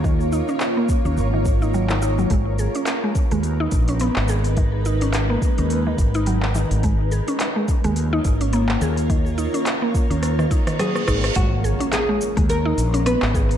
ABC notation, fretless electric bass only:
X:1
M:4/4
L:1/16
Q:"Swing 16ths" 1/4=106
K:G#m
V:1 name="Fretless electric bass" clef=bass
D,,2 z4 z D,, G,,,6- G,,, z | G,,,2 z4 z D,,2 z A,,,2 z G,,,3- | G,,,4- G,,, z2 D,,2 z G,,,4 z G,,,- | G,,,2 z4 z D,,2 z G,,,3 z D,,2- |
D,,2 z4 z D,,2 z4 z G,,, z | G,,,2 z4 z D,,2 z A,,,2 z G,,,3 |]